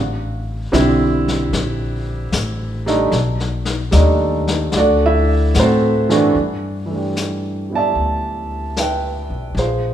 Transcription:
0.00 0.70 A1 medium
0.72 1.50 B1 medium
0.72 1.96 D3 medium
0.72 1.96 G3 medium
0.72 1.96 C4 medium
0.72 1.96 E4 loud
0.72 snare medium
0.72 hi-hat pedal soft
1.28 snare soft
1.53 2.30 A#1 medium
1.53 brush sweep medium
1.53 snare soft
2.32 3.10 A1 medium
2.32 snare medium
2.32 hi-hat pedal medium
2.86 3.09 G3 medium
2.86 3.10 A3 medium
2.86 3.09 D4 medium
2.86 3.10 D#4 medium
2.86 snare soft
3.12 3.89 B1 medium
3.12 brush sweep soft
3.12 snare soft
3.40 snare soft
3.65 snare soft
3.91 4.70 D#2 medium
3.91 4.72 G3 medium
3.91 4.72 A3 medium
3.91 4.73 D4 medium
3.91 4.73 D#4 medium
3.91 snare medium
3.91 hi-hat pedal medium
4.48 snare soft
4.72 5.52 D2 medium
4.72 brush sweep medium
4.72 snare medium
4.77 5.02 D4 medium
4.77 5.01 F#4 medium
4.77 5.01 A4 medium
4.77 5.01 D5 medium
5.06 5.53 E4 medium
5.06 5.53 E5 medium
5.54 6.33 A2 loud
5.54 snare medium
5.54 hi-hat pedal medium
5.59 5.92 C4 medium
5.59 5.92 F#4 medium
5.59 5.92 A4 medium
5.59 5.91 C5 medium
6.09 6.32 G2 medium
6.09 6.32 E3 medium
6.09 6.32 A3 medium
6.09 6.32 D4 medium
6.09 6.33 F#4 medium
6.09 snare soft
6.35 7.92 G2 medium
6.35 brush sweep soft
6.86 9.54 E3 soft
6.86 9.56 A3 soft
6.92 9.57 D4 soft
6.92 9.59 G4 soft
7.16 snare soft
7.16 hi-hat pedal soft
7.70 9.56 G3 soft
7.70 9.56 B3 soft
7.70 9.57 E4 soft
7.75 9.30 D5 medium
7.75 8.78 E5 medium
7.75 8.49 A5 medium
7.95 9.27 D2 medium
7.95 brush sweep soft
8.76 9.54 B4 medium
8.76 9.54 E5 medium
8.76 9.53 G5 medium
8.76 snare soft
8.76 hi-hat pedal medium
9.30 9.54 B1 medium
9.55 9.94 A#1 medium
9.55 brush sweep soft
9.55 snare soft
9.59 9.94 F4 soft
9.59 9.94 G#4 soft
9.59 9.94 C5 medium

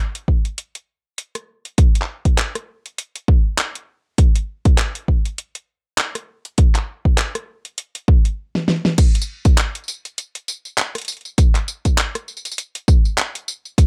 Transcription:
0.15 closed hi-hat medium
0.28 kick medium
0.45 closed hi-hat soft
0.58 closed hi-hat medium
0.75 closed hi-hat soft
1.18 closed hi-hat medium
1.35 cross-stick soft
1.35 closed hi-hat soft
1.65 closed hi-hat soft
1.78 kick loud
1.78 closed hi-hat medium
1.95 closed hi-hat soft
2.02 clap soft
2.25 kick medium
2.25 closed hi-hat soft
2.38 clap loud
2.38 closed hi-hat medium
2.55 cross-stick medium
2.55 closed hi-hat soft
2.86 closed hi-hat soft
2.98 closed hi-hat medium
3.16 closed hi-hat medium
3.28 kick loud
3.58 clap loud
3.58 closed hi-hat medium
3.75 closed hi-hat medium
4.18 kick loud
4.18 closed hi-hat medium
4.36 closed hi-hat medium
4.65 kick loud
4.65 closed hi-hat soft
4.78 clap loud
4.78 closed hi-hat medium
4.95 closed hi-hat medium
5.08 kick medium
5.25 closed hi-hat soft
5.38 closed hi-hat medium
5.55 closed hi-hat medium
5.98 clap loud
5.98 closed hi-hat medium
6.15 cross-stick soft
6.15 closed hi-hat medium
6.45 closed hi-hat soft
6.58 kick loud
6.58 closed hi-hat medium
6.75 clap soft
6.75 closed hi-hat medium
7.05 kick medium
7.18 clap loud
7.18 closed hi-hat medium
7.35 cross-stick medium
7.35 closed hi-hat medium
7.65 closed hi-hat soft
7.78 closed hi-hat medium
7.95 closed hi-hat medium
8.08 kick loud
8.25 closed hi-hat soft
8.55 snare medium
8.68 snare medium
8.85 snare medium
8.98 kick loud
8.98 closed hi-hat medium
8.98 crash loud
8.98 tambourine soft
9.15 closed hi-hat medium
9.15 tambourine soft
9.22 tambourine medium
9.45 kick loud
9.45 closed hi-hat soft
9.45 tambourine soft
9.58 clap loud
9.58 closed hi-hat medium
9.58 tambourine soft
9.75 closed hi-hat medium
9.75 tambourine soft
9.84 tambourine soft
9.88 tambourine medium
10.05 closed hi-hat soft
10.05 tambourine soft
10.18 closed hi-hat medium
10.18 tambourine soft
10.35 closed hi-hat medium
10.35 tambourine soft
10.48 tambourine medium
10.65 tambourine soft
10.78 clap loud
10.78 closed hi-hat medium
10.78 tambourine soft
10.95 cross-stick soft
10.95 closed hi-hat medium
10.95 tambourine soft
10.98 closed hi-hat soft
11.02 closed hi-hat soft
11.05 closed hi-hat soft
11.08 closed hi-hat soft
11.08 tambourine medium
11.12 closed hi-hat soft
11.17 closed hi-hat soft
11.21 closed hi-hat soft
11.25 tambourine soft
11.38 kick loud
11.38 closed hi-hat medium
11.38 tambourine soft
11.55 clap soft
11.55 closed hi-hat medium
11.55 tambourine soft
11.68 tambourine medium
11.85 kick medium
11.85 closed hi-hat soft
11.85 tambourine soft
11.98 clap loud
11.98 closed hi-hat medium
11.98 tambourine soft
12.15 cross-stick medium
12.15 closed hi-hat medium
12.15 tambourine soft
12.28 tambourine soft
12.37 tambourine soft
12.45 closed hi-hat soft
12.45 tambourine soft
12.52 tambourine medium
12.58 closed hi-hat medium
12.58 tambourine soft
12.75 closed hi-hat medium
12.75 tambourine soft
12.88 kick loud
12.88 tambourine medium
13.05 tambourine soft
13.18 clap loud
13.18 closed hi-hat medium
13.18 tambourine soft
13.35 closed hi-hat medium
13.35 tambourine soft
13.48 tambourine medium
13.65 tambourine soft
13.78 kick loud
13.78 closed hi-hat medium
13.78 tambourine soft

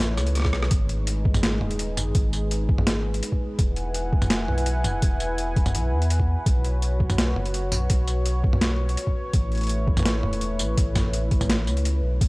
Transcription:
0.00 0.19 A1 medium
0.00 0.69 A3 medium
0.00 0.69 E4 medium
0.00 0.69 B4 medium
0.00 0.69 C#5 loud
0.00 tambourine soft
0.17 0.52 C#2 loud
0.17 cross-stick medium
0.17 tambourine soft
0.27 closed hi-hat soft
0.35 cross-stick soft
0.35 closed hi-hat medium
0.38 cross-stick soft
0.40 cross-stick medium
0.42 kick medium
0.42 cross-stick medium
0.45 cross-stick medium
0.53 0.70 B1 loud
0.53 cross-stick medium
0.63 cross-stick medium
0.71 1.60 G#1 loud
0.71 3.56 G#3 medium
0.71 3.56 D#4 medium
0.71 3.56 G#4 medium
0.71 9.30 B4 medium
0.71 kick loud
0.71 closed hi-hat medium
0.89 closed hi-hat soft
1.07 closed hi-hat medium
1.25 kick loud
1.34 mid tom medium
1.34 tambourine soft
1.43 snare loud
1.43 closed hi-hat medium
1.61 1.98 D#1 medium
1.61 mid tom medium
1.71 closed hi-hat soft
1.79 closed hi-hat medium
1.97 2.14 G#1 medium
1.97 mid tom medium
1.97 tambourine medium
2.15 2.68 G#1 loud
2.15 kick loud
2.15 closed hi-hat medium
2.33 tambourine soft
2.51 closed hi-hat medium
2.69 3.22 G#1 medium
2.69 kick loud
2.78 mid tom medium
2.87 snare loud
2.87 closed hi-hat medium
3.14 closed hi-hat soft
3.23 closed hi-hat medium
3.32 kick medium
3.59 4.47 E1 loud
3.59 6.44 E4 medium
3.59 6.44 F#5 medium
3.59 6.44 G#5 loud
3.59 kick loud
3.59 closed hi-hat medium
3.76 closed hi-hat soft
3.94 closed hi-hat medium
4.13 kick loud
4.22 mid tom medium
4.22 tambourine soft
4.30 snare loud
4.30 closed hi-hat medium
4.48 4.86 B1 medium
4.48 mid tom medium
4.58 closed hi-hat soft
4.66 closed hi-hat medium
4.84 5.01 E1 medium
4.84 mid tom medium
4.84 tambourine medium
5.02 5.55 E1 loud
5.02 kick loud
5.02 closed hi-hat medium
5.20 closed hi-hat soft
5.20 tambourine soft
5.38 closed hi-hat medium
5.56 5.76 E1 medium
5.56 kick loud
5.56 closed hi-hat soft
5.66 mid tom medium
5.66 tambourine soft
5.74 5.94 B1 loud
5.74 closed hi-hat medium
5.92 6.36 E2 medium
6.02 closed hi-hat soft
6.10 closed hi-hat medium
6.20 kick medium
6.46 7.35 B1 loud
6.46 9.31 F#4 medium
6.46 12.17 C#5 medium
6.46 kick loud
6.46 closed hi-hat medium
6.64 closed hi-hat soft
6.82 closed hi-hat medium
7.00 kick loud
7.10 mid tom medium
7.10 tambourine soft
7.18 snare loud
7.18 closed hi-hat medium
7.36 7.73 F#1 medium
7.36 mid tom medium
7.46 closed hi-hat soft
7.54 closed hi-hat medium
7.71 7.88 B1 medium
7.71 mid tom medium
7.71 tambourine medium
7.90 8.43 B1 medium
7.90 kick loud
7.90 closed hi-hat medium
8.08 closed hi-hat soft
8.08 tambourine soft
8.26 closed hi-hat medium
8.44 8.97 B1 medium
8.44 kick loud
8.53 mid tom medium
8.61 snare loud
8.61 closed hi-hat medium
8.89 closed hi-hat soft
8.97 closed hi-hat medium
9.07 kick medium
9.33 10.22 A1 loud
9.33 12.18 A3 medium
9.33 12.18 E4 medium
9.33 12.18 B4 medium
9.33 kick loud
9.33 closed hi-hat medium
9.52 closed hi-hat soft
9.55 closed hi-hat soft
9.58 closed hi-hat soft
9.61 closed hi-hat soft
9.63 closed hi-hat soft
9.67 closed hi-hat soft
9.69 closed hi-hat medium
9.87 kick loud
9.97 mid tom medium
9.97 tambourine soft
9.99 mid tom medium
10.03 snare loud
10.03 closed hi-hat medium
10.03 mid tom medium
10.23 10.61 E1 medium
10.23 mid tom medium
10.33 closed hi-hat soft
10.41 closed hi-hat medium
10.59 10.76 A1 medium
10.59 tambourine medium
10.77 11.30 A1 loud
10.77 kick loud
10.77 closed hi-hat medium
10.95 kick medium
10.95 snare medium
10.95 closed hi-hat soft
10.95 mid tom medium
10.95 tambourine soft
11.13 closed hi-hat medium
11.31 11.68 A1 medium
11.31 kick loud
11.31 closed hi-hat soft
11.41 mid tom medium
11.41 tambourine soft
11.50 snare loud
11.50 closed hi-hat medium
11.67 12.02 C#2 medium
11.67 tambourine soft
11.77 closed hi-hat soft
11.85 closed hi-hat medium
12.03 12.20 B1 loud
12.20 12.28 G#1 loud
12.20 12.28 G#3 medium
12.20 12.28 D#4 medium
12.20 12.28 G#4 medium
12.20 12.28 B4 loud
12.20 kick loud
12.20 closed hi-hat medium

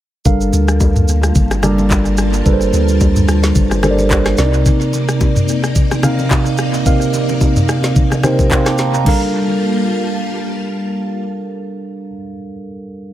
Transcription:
0.25 0.52 G1 loud
0.25 1.14 G3 medium
0.25 4.34 G3 medium
0.25 4.34 A#3 medium
0.25 1.14 D4 medium
0.25 4.34 F4 medium
0.25 1.14 A4 medium
0.25 1.14 A#4 medium
0.25 1.14 F5 medium
0.25 4.34 A5 medium
0.25 kick loud
0.25 low conga medium
0.25 shaker medium
0.41 shaker medium
0.53 1.32 D2 medium
0.53 low bongo medium
0.53 shaker medium
0.68 cross-stick medium
0.68 shaker medium
0.80 kick medium
0.80 high bongo medium
0.80 shaker medium
0.96 mid tom medium
0.96 shaker medium
1.08 shaker medium
1.23 cross-stick medium
1.23 shaker medium
1.35 2.42 G1 loud
1.35 kick loud
1.35 low conga medium
1.35 shaker medium
1.51 cross-stick medium
1.51 low bongo medium
1.51 shaker soft
1.63 2.30 G3 medium
1.63 2.30 D4 medium
1.63 2.30 A4 medium
1.63 2.30 A#4 medium
1.63 2.31 D5 medium
1.63 cross-stick loud
1.63 high bongo medium
1.63 low conga medium
1.63 shaker medium
1.78 low bongo medium
1.78 shaker soft
1.91 kick medium
1.91 clap medium
1.91 high bongo medium
1.91 shaker medium
2.05 shaker soft
2.17 cross-stick medium
2.17 shaker medium
2.33 shaker medium
2.45 2.72 G1 loud
2.45 3.34 G3 medium
2.45 3.34 D4 medium
2.45 3.34 A4 medium
2.45 3.35 A#4 medium
2.45 2.53 B4 medium
2.45 kick loud
2.45 low conga medium
2.45 shaker medium
2.53 3.38 C5 medium
2.61 shaker medium
2.73 3.52 D2 medium
2.73 low bongo medium
2.73 shaker medium
2.88 shaker medium
3.00 kick medium
3.00 high bongo medium
3.00 shaker medium
3.16 mid tom medium
3.16 shaker medium
3.28 cross-stick medium
3.28 shaker medium
3.43 snare medium
3.43 shaker medium
3.55 4.34 G1 loud
3.55 kick loud
3.55 low conga medium
3.55 shaker medium
3.71 cross-stick medium
3.71 low bongo medium
3.71 shaker soft
3.83 4.38 G3 medium
3.83 4.37 D4 medium
3.83 4.38 A4 medium
3.83 4.38 A#4 medium
3.83 3.91 C5 medium
3.83 cross-stick loud
3.83 high bongo medium
3.83 low conga medium
3.83 shaker medium
3.90 4.38 D5 medium
3.99 low bongo medium
3.99 shaker soft
4.11 kick medium
4.11 clap medium
4.11 high bongo medium
4.11 shaker medium
4.25 cross-stick medium
4.25 snare medium
4.25 shaker soft
4.37 4.64 C2 medium
4.37 5.27 C3 medium
4.37 9.02 C3 medium
4.37 9.02 A#3 medium
4.37 5.27 C4 medium
4.37 4.46 D4 medium
4.37 9.02 D#4 medium
4.37 5.27 A#4 medium
4.37 9.02 D5 medium
4.37 5.27 D5 loud
4.37 snare medium
4.37 shaker medium
4.45 5.30 D#4 medium
4.53 shaker medium
4.66 kick loud
4.66 low conga medium
4.66 shaker medium
4.81 shaker medium
4.93 low bongo medium
4.93 shaker medium
5.08 cross-stick medium
5.08 shaker medium
5.20 kick medium
5.20 high bongo medium
5.20 shaker medium
5.36 mid tom medium
5.36 shaker medium
5.48 shaker medium
5.63 cross-stick medium
5.63 shaker medium
5.75 kick loud
5.75 low conga medium
5.75 shaker medium
5.91 cross-stick medium
5.91 low bongo medium
5.91 shaker soft
6.03 6.70 C3 medium
6.03 6.71 C4 medium
6.03 6.71 D#4 medium
6.03 6.71 A#4 medium
6.03 6.71 F5 loud
6.03 cross-stick loud
6.03 high bongo medium
6.03 low conga medium
6.03 shaker medium
6.19 low bongo medium
6.19 shaker soft
6.31 kick medium
6.31 clap medium
6.31 high bongo medium
6.31 shaker medium
6.46 shaker soft
6.58 cross-stick medium
6.58 shaker medium
6.74 shaker medium
6.86 7.74 C3 medium
6.86 7.75 C4 medium
6.86 7.75 D#4 medium
6.86 7.75 A#4 medium
6.86 7.75 F5 medium
6.86 kick loud
6.86 low conga medium
6.86 shaker medium
7.01 shaker medium
7.13 low bongo medium
7.13 shaker medium
7.29 low bongo medium
7.29 shaker medium
7.41 kick medium
7.41 high bongo medium
7.41 shaker medium
7.56 mid tom medium
7.56 shaker medium
7.69 cross-stick medium
7.69 shaker medium
7.83 snare medium
7.83 high bongo soft
7.83 shaker medium
7.96 kick loud
7.96 low conga medium
7.96 shaker medium
8.12 cross-stick medium
8.12 low bongo medium
8.12 shaker soft
8.23 8.91 C3 medium
8.23 8.91 C4 medium
8.23 8.91 D#4 medium
8.23 8.91 A#4 medium
8.23 8.91 C5 loud
8.23 8.49 G5 medium
8.23 cross-stick loud
8.23 high bongo medium
8.23 low conga medium
8.23 shaker medium
8.39 kick medium
8.39 low bongo medium
8.39 shaker soft
8.51 8.65 F5 medium
8.51 8.65 G5 medium
8.51 8.66 C6 medium
8.51 kick medium
8.51 clap medium
8.51 high bongo medium
8.51 shaker medium
8.66 8.78 G5 medium
8.66 8.93 A5 medium
8.66 8.93 D6 medium
8.66 cross-stick medium
8.66 snare medium
8.66 shaker soft
8.78 8.93 A#5 medium
8.78 snare medium
8.78 shaker medium
8.94 9.07 F5 medium
8.94 9.20 A#5 medium
8.94 shaker medium
9.04 12.09 G3 medium
9.04 12.02 G3 medium
9.04 12.02 A#3 medium
9.04 12.10 D4 medium
9.04 12.02 F4 medium
9.04 12.11 A4 medium
9.04 12.12 A#4 medium
9.04 12.02 A5 medium
9.04 kick loud
9.04 crash medium
9.04 low conga medium
9.09 12.13 F5 medium

